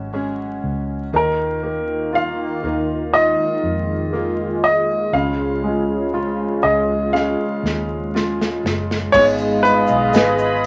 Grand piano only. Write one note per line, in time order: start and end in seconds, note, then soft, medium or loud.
1.16 2.18 A#4 medium
2.15 3.17 F5 medium
3.13 4.59 D#5 medium
4.64 5.15 D#5 medium
5.13 6.09 F5 medium
6.63 7.10 D#5 medium
7.13 8.59 F5 medium
9.12 9.24 C#5 medium
9.63 10.66 B4 medium